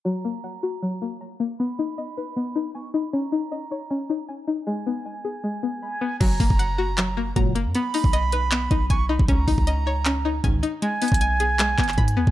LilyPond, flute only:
\new Staff \with { instrumentName = "Flute" } { \time 4/4 \key fis \major \tempo 4 = 156 ais''2. r4 | b''2. cis'''8 b''8 | ais''2. r4 | gis''1 |
ais''2. r4 | b''2. cis'''8 b''8 | ais''2. r4 | gis''1 | }